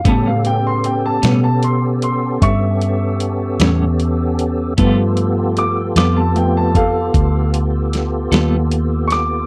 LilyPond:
<<
  \new Staff \with { instrumentName = "Grand piano" } { \time 12/8 \key a \dorian \tempo 4. = 51 a''16 f''16 g''16 c'''16 g''16 a''16 r16 a''16 c'''16 r16 c'''8 <e'' cis'''>2. | r4 d'''16 r16 d'''16 a''16 g''16 a''16 <a' f''>4 r2 <cis''' d'''>8 | }
  \new Staff \with { instrumentName = "Grand piano" } { \time 12/8 \key a \dorian <cis g b>1. | <f a b>4. r8 <f a b>8 r2. r8 | }
  \new Staff \with { instrumentName = "Tonewheel organ" } { \time 12/8 \key a \dorian <b cis' g' a'>1. | <b f' g' a'>1. | }
  \new Staff \with { instrumentName = "Clean electric guitar" } { \time 12/8 \key a \dorian <a, g b cis'>8 r4 <a, g b cis'>8 r2 r8 <a, g b cis'>8 r4 | <g b f' a'>8 r4 <g b f' a'>8 r2 r8 <g b f' a'>8 r4 | }
  \new Staff \with { instrumentName = "Fingered electric bass" } { \clef bass \time 12/8 \key a \dorian a,4. b,4. g,4. e,4. | g,4. f,4. d,4. ees,4. | }
  \new DrumStaff \with { instrumentName = "Drums" } \drummode { \time 12/8 <hh bd>8 hh8 hh8 <hh sn>8 hh8 hh8 <hh bd>8 hh8 hh8 <hh sn>8 hh8 hh8 | <hh bd>8 hh8 hh8 <hh sn>8 hh8 <hh bd>8 <hh bd>8 hh8 <hh sn>8 <hh sn>8 hh8 <hh sn>8 | }
>>